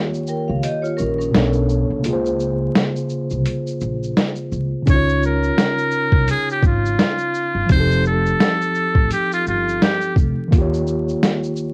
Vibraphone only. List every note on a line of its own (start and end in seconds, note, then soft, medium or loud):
0.28 0.48 A#4 medium
0.28 0.48 G5 medium
0.48 0.63 F5 medium
0.63 0.83 G4 medium
0.63 0.83 D#5 medium
0.82 0.98 F4 medium
0.82 0.97 C#5 medium
0.97 1.18 C#4 medium
0.97 1.17 A#4 medium
1.18 1.53 C#4 medium
1.18 1.52 A#4 medium